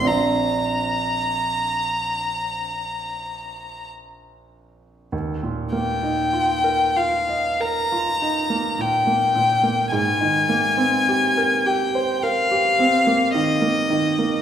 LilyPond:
<<
  \new Staff \with { instrumentName = "Violin" } { \time 4/4 \key bes \major \tempo 4 = 50 bes''2. r4 | \key ees \major r8 g''4 f''8 bes''4 g''4 | aes''4. g''8 f''4 ees''4 | }
  \new Staff \with { instrumentName = "Grand piano" } { \time 4/4 \key bes \major <bes,, c' d' f' d''>1 | \key ees \major ees,16 bes,16 bes16 ees'16 f'16 bes'16 f'16 ees''16 bes'16 f'16 ees'16 bes16 bes,16 bes16 bes,16 bes16 | aes,16 ees16 bes16 c'16 g'16 bes'16 g'16 c''16 bes'16 g'16 c'16 bes16 ees16 bes16 ees16 bes16 | }
>>